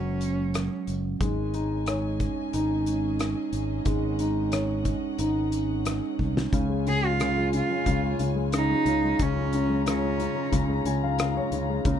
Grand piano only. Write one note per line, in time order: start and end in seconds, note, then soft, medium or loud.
0.00 1.23 F#3 medium
1.22 3.82 G#3 medium
1.54 2.52 D#4 soft
1.88 3.16 C#5 medium
2.54 3.82 D#4 medium
3.86 6.49 G#3 medium
4.20 5.18 D#4 soft
4.52 5.82 C#5 soft
5.19 6.49 D#4 soft
6.53 6.85 C#3 medium
6.69 7.02 G#3 soft
6.87 7.19 C#3 soft
7.03 7.36 G#3 soft
7.20 7.52 C#3 medium
7.37 7.69 G#3 soft
7.54 7.85 C#3 soft
7.71 8.02 G#3 soft
7.87 8.18 C#3 medium
8.04 8.34 G#3 soft
8.20 8.52 C#3 soft
8.36 8.69 G#3 soft
8.54 8.86 C#3 medium
8.70 9.03 G#3 medium
8.87 9.19 C#3 soft
9.04 9.36 G#3 soft
9.21 9.53 C#3 medium
9.37 9.68 G#3 soft
9.54 9.85 C#3 medium
9.70 10.02 G#3 soft
9.86 10.19 C#3 soft
10.03 10.34 G#3 soft
10.20 10.50 C#3 medium
10.36 10.68 G#3 medium
10.52 10.84 C#3 medium
10.69 11.02 G#3 soft
10.86 11.19 C#3 medium
10.86 11.01 G#5 medium
11.03 11.36 G#3 medium
11.03 11.18 F5 medium
11.21 11.51 C#3 medium
11.21 11.35 F5 medium
11.37 11.68 G#3 medium
11.37 11.82 C#5 medium
11.53 11.85 C#3 medium
11.70 11.85 G#3 medium
11.86 11.99 C#3 medium